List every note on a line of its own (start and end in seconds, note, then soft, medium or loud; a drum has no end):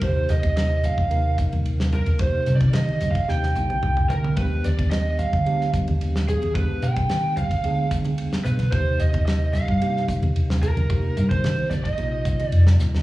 0.00 0.25 D#2 loud
0.00 0.98 C3 medium
0.00 0.98 F3 medium
0.00 0.98 A#3 medium
0.00 0.98 D#4 medium
0.00 0.99 G4 medium
0.00 0.28 C5 medium
0.00 kick loud
0.00 ride medium
0.29 0.87 D#2 medium
0.29 0.56 D#5 medium
0.29 snare soft
0.29 hi-hat pedal medium
0.29 ride medium
0.43 kick medium
0.43 ride medium
0.43 high conga medium
0.57 0.84 D#5 medium
0.57 snare loud
0.57 ride medium
0.84 1.35 F5 medium
0.84 hi-hat pedal medium
0.84 ride soft
0.84 high conga medium
0.84 low conga medium
0.98 1.44 D#2 medium
0.98 kick medium
1.09 2.07 C3 medium
1.09 2.07 F3 medium
1.09 2.07 A#3 medium
1.09 2.07 D#4 medium
1.09 2.08 A#4 medium
1.09 ride medium
1.38 kick medium
1.38 hi-hat pedal medium
1.38 ride medium
1.38 low conga soft
1.52 1.63 D#2 medium
1.52 ride medium
1.52 high conga medium
1.65 2.00 D#2 medium
1.65 ride medium
1.80 snare loud
1.92 2.21 A#4 medium
1.92 hi-hat pedal medium
1.92 ride soft
1.92 low conga medium
2.06 2.29 D#2 medium
2.06 ride medium
2.06 high conga medium
2.19 3.16 C3 medium
2.19 3.16 F3 medium
2.19 3.17 A#3 medium
2.19 3.17 D#4 medium
2.19 3.17 G4 medium
2.19 2.56 C5 medium
2.19 kick loud
2.19 ride medium
2.34 muted fingered electric bass stroke soft
2.46 2.70 C3 medium
2.46 snare soft
2.46 hi-hat pedal medium
2.46 ride medium
2.46 low conga medium
2.56 2.74 D5 medium
2.60 kick medium
2.60 ride medium
2.60 high conga medium
2.73 3.03 D#3 medium
2.73 3.08 D#5 medium
2.73 snare loud
2.73 ride medium
2.89 high conga medium
3.00 3.13 D#2 medium
3.00 hi-hat pedal medium
3.00 ride medium
3.00 low conga medium
3.11 3.29 F5 medium
3.11 ride medium
3.15 kick medium
3.28 3.52 D#2 medium
3.28 4.25 C3 medium
3.28 4.25 F3 medium
3.28 4.25 A#3 medium
3.28 4.26 D#4 medium
3.28 4.26 G4 medium
3.28 4.13 G5 loud
3.28 snare medium
3.43 snare soft
3.55 3.80 A#1 medium
3.55 hi-hat pedal medium
3.55 high tom medium
3.55 low conga medium
3.70 high tom medium
3.70 high conga medium
3.83 4.07 C2 medium
3.83 mid tom medium
3.97 mid tom medium
4.10 4.37 D2 medium
4.10 4.37 A#4 medium
4.10 floor tom medium
4.10 hi-hat pedal medium
4.10 low conga medium
4.24 floor tom medium
4.24 high conga medium
4.36 4.60 D#2 medium
4.36 5.34 F3 medium
4.36 5.34 G#3 medium
4.36 5.34 B3 medium
4.36 5.34 D4 medium
4.36 5.34 G4 medium
4.36 4.62 B4 medium
4.36 kick loud
4.36 ride medium
4.64 5.23 D#2 medium
4.64 4.90 D5 medium
4.64 snare soft
4.64 hi-hat pedal medium
4.64 ride medium
4.79 kick medium
4.79 ride medium
4.79 high conga medium
4.91 5.16 D#5 medium
4.91 snare loud
4.91 ride medium
5.19 5.69 F5 medium
5.19 hi-hat pedal medium
5.19 ride soft
5.19 high conga medium
5.19 low conga medium
5.33 5.79 D2 medium
5.33 kick medium
5.45 6.43 F3 medium
5.45 6.43 G#3 medium
5.45 6.43 B3 medium
5.45 6.43 D4 medium
5.45 6.43 G4 medium
5.45 ride medium
5.61 snare soft
5.74 kick medium
5.74 hi-hat pedal medium
5.74 ride medium
5.74 low conga medium
5.88 5.99 D#2 medium
5.88 ride medium
5.88 high conga medium
6.01 6.36 D#2 medium
6.01 ride medium
6.16 snare medium
6.28 6.55 G#4 medium
6.28 hi-hat pedal medium
6.28 ride soft
6.28 low conga medium
6.42 6.66 D#2 medium
6.42 ride medium
6.42 high conga medium
6.55 7.52 F3 medium
6.55 7.52 G#3 medium
6.55 7.52 B3 medium
6.55 7.52 D4 medium
6.55 7.52 G4 medium
6.55 6.83 B4 medium
6.55 kick loud
6.55 ride medium
6.70 muted fingered electric bass stroke soft
6.82 7.05 B2 medium
6.82 7.33 G5 loud
6.82 hi-hat pedal medium
6.82 ride medium
6.96 kick medium
6.96 ride medium
6.96 high conga medium
7.09 7.38 D#3 medium
7.09 snare loud
7.09 ride medium
7.37 7.49 D2 medium
7.37 7.87 F5 medium
7.37 hi-hat pedal medium
7.37 ride medium
7.37 high conga medium
7.37 low conga medium
7.51 muted fingered electric bass stroke soft
7.51 kick medium
7.51 ride medium
7.63 8.22 D2 medium
7.63 8.61 F3 medium
7.63 8.61 G#3 medium
7.63 8.61 B3 medium
7.63 8.61 D4 medium
7.63 8.61 G#4 medium
7.63 ride medium
7.91 kick medium
7.91 hi-hat pedal medium
7.91 ride medium
8.05 ride medium
8.05 high conga medium
8.18 ride medium
8.32 muted fingered electric bass stroke soft
8.32 snare loud
8.44 8.74 B2 medium
8.44 8.71 B4 medium
8.44 hi-hat pedal medium
8.44 ride medium
8.44 low conga medium
8.59 snare soft
8.59 ride medium
8.59 high conga medium
8.72 8.95 D#2 medium
8.72 9.69 C3 medium
8.72 9.69 F3 medium
8.72 9.69 A#3 medium
8.72 9.69 D#4 medium
8.72 9.69 G4 medium
8.72 9.00 C5 medium
8.72 kick loud
8.72 ride medium
9.00 9.58 D#2 medium
9.00 9.25 D#5 medium
9.00 hi-hat pedal medium
9.00 ride medium
9.13 kick medium
9.13 ride medium
9.13 high conga medium
9.26 9.53 D#5 medium
9.26 snare loud
9.26 ride medium
9.53 10.04 F5 loud
9.53 snare soft
9.53 hi-hat pedal medium
9.53 ride medium
9.53 low conga medium
9.68 10.14 G2 medium
9.68 kick medium
9.81 10.78 C3 medium
9.81 10.78 F3 medium
9.81 10.78 A#3 medium
9.81 10.78 D#4 medium
9.81 10.78 G4 medium
9.81 ride medium
9.97 snare soft
10.08 kick medium
10.08 hi-hat pedal medium
10.08 ride medium
10.08 low conga medium
10.23 10.33 D#2 medium
10.23 ride medium
10.23 high conga medium
10.36 10.71 D#2 medium
10.36 ride medium
10.50 snare loud
10.63 11.27 A#4 medium
10.63 hi-hat pedal medium
10.63 ride medium
10.63 low conga medium
10.77 10.88 D#2 medium
10.77 ride medium
10.77 high conga medium
10.89 11.02 D#2 loud
10.89 11.86 C3 medium
10.89 11.86 F3 medium
10.89 11.86 A#3 medium
10.89 11.86 D#4 medium
10.89 11.87 G4 medium
10.89 kick loud
10.89 ride medium
11.04 muted fingered electric bass stroke soft
11.17 11.40 G2 medium
11.17 hi-hat pedal medium
11.17 ride medium
11.17 low conga medium
11.29 11.67 C5 medium
11.29 kick medium
11.29 ride medium
11.29 high conga medium
11.44 11.73 D#3 medium
11.44 snare loud
11.44 ride medium
11.59 high conga medium
11.70 11.83 A#1 medium
11.70 11.84 D5 medium
11.70 snare soft
11.70 hi-hat pedal medium
11.70 ride medium
11.70 high conga medium
11.70 low conga medium
11.84 12.45 D#5 medium
11.84 muted fingered electric bass stroke soft
11.84 kick medium
11.84 ride medium
11.98 12.44 A#1 medium
11.98 12.95 C3 medium
11.98 12.95 F3 medium
11.98 12.95 A#3 medium
11.98 12.95 D#4 medium
11.98 12.95 F4 medium
11.98 ride medium
12.25 kick medium
12.25 hi-hat pedal medium
12.25 ride medium
12.25 low conga medium
12.39 ride medium
12.39 high conga medium
12.45 12.75 D5 medium
12.52 12.77 F2 medium
12.52 ride medium
12.67 snare medium
12.79 13.03 D#2 medium
12.79 snare medium
12.79 hi-hat pedal medium
12.79 low conga medium
12.95 snare medium
12.95 high conga medium